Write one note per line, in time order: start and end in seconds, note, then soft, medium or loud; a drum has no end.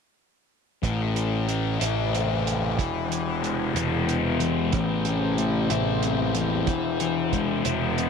0.83 1.77 A1 medium
0.83 8.10 E2 medium
0.83 2.45 A2 medium
0.83 8.10 C3 medium
0.83 kick medium
0.83 closed hi-hat medium
1.15 2.44 E3 medium
1.15 closed hi-hat medium
1.48 2.78 A3 medium
1.48 closed hi-hat soft
1.80 2.79 A1 medium
1.80 3.74 E4 medium
1.80 closed hi-hat medium
2.12 2.78 C4 soft
2.12 closed hi-hat soft
2.44 2.76 E3 soft
2.44 closed hi-hat medium
2.76 3.72 E1 medium
2.76 3.08 E3 medium
2.76 kick medium
2.76 closed hi-hat medium
3.09 4.39 E3 medium
3.09 closed hi-hat medium
3.42 4.72 G#3 medium
3.42 closed hi-hat soft
3.75 4.73 E1 medium
3.75 5.70 E4 medium
3.75 closed hi-hat medium
4.07 4.72 B3 medium
4.07 closed hi-hat soft
4.40 5.05 E3 medium
4.40 closed hi-hat medium
4.73 5.66 A1 medium
4.73 6.35 A2 medium
4.73 kick medium
4.73 closed hi-hat medium
5.05 6.35 E3 medium
5.05 closed hi-hat medium
5.38 6.68 A3 medium
5.38 closed hi-hat soft
5.70 6.68 A1 medium
5.70 7.66 E4 medium
5.70 closed hi-hat medium
6.03 6.68 C4 medium
6.03 closed hi-hat medium
6.35 6.68 E3 medium
6.35 closed hi-hat medium
6.67 7.61 E1 medium
6.67 7.00 E3 medium
6.67 kick medium
6.67 closed hi-hat medium
7.00 8.10 E3 medium
7.00 closed hi-hat medium
7.33 8.10 G#3 medium
7.33 kick medium
7.33 closed hi-hat medium
7.65 8.10 E1 medium
7.65 8.10 E4 medium
7.65 closed hi-hat medium
7.97 8.10 B3 medium
7.97 closed hi-hat medium